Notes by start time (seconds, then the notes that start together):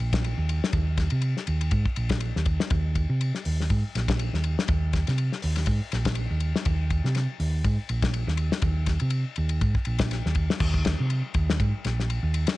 0.00 A#1
0.13 kick, snare, ride bell
0.24 ride bell
0.38 D#2
0.49 ride bell
0.64 snare
0.73 D#2, kick, ride bell
0.98 kick, snare, ride bell
1.10 C3, ride bell
1.22 ride bell
1.37 snare
1.47 D#2, ride bell
1.61 ride bell
1.71 G#2, kick, ride bell
1.86 kick
1.96 A#1, ride bell
2.09 kick, snare, ride bell
2.20 ride bell
2.36 D#2, snare
2.46 kick, ride bell
2.60 snare
2.70 D#2, kick, ride bell
2.95 kick, ride bell
3.10 C3
3.21 ride bell
3.35 snare
3.45 D#2, open hi-hat
3.60 snare
3.70 G#2, kick, ride bell
3.95 A#1, snare, ride bell
4.08 kick, snare, ride bell
4.19 ride bell
4.33 D#2, snare
4.44 ride bell
4.59 snare
4.68 D#2, kick, ride bell
4.93 kick, snare, ride bell
5.07 C3, snare, ride bell
5.18 ride bell
5.32 snare
5.42 D#2, open hi-hat
5.56 snare, ride bell
5.66 G#2, kick, ride bell
5.92 A#1, snare, ride bell
6.05 kick, snare, ride bell
6.15 ride bell
6.31 D#2
6.40 ride bell
6.56 snare
6.65 D#2, kick, ride bell
6.90 kick, ride bell
7.04 C3, snare
7.15 snare, ride bell
7.40 D#2, open hi-hat
7.64 G#2, kick, ride bell
7.89 A#1, ride bell
8.02 kick, snare, ride bell
8.14 ride bell
8.27 D#2, snare
8.37 ride bell
8.52 snare
8.62 D#2, kick, ride bell
8.86 kick, snare, ride bell
9.00 C3, ride bell
9.10 ride bell
9.36 D#2, ride bell
9.49 ride bell
9.61 G#2, kick, ride bell
9.75 kick
9.85 A#1, ride bell
9.99 kick, snare, ride bell
10.11 snare, ride bell
10.26 D#2, snare
10.35 kick, ride bell
10.50 snare
10.60 D#2, kick, crash
10.74 kick
10.85 kick, snare, ride bell
11.00 C3
11.10 ride bell
11.34 D#2, kick, ride bell
11.50 snare
11.60 G#2, kick, ride bell
11.85 A#1, snare, ride bell
12.00 snare
12.10 ride bell
12.23 D#2
12.34 ride bell
12.47 snare, ride bell